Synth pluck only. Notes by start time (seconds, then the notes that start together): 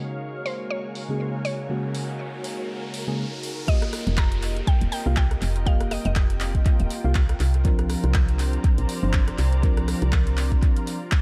Already playing: A#4
0.46 C5
0.70 C#5
1.45 C#5
3.68 D#5
4.18 A#5
4.67 G5
4.92 G5
5.17 G5
5.67 F5
5.91 D#5
6.06 D#5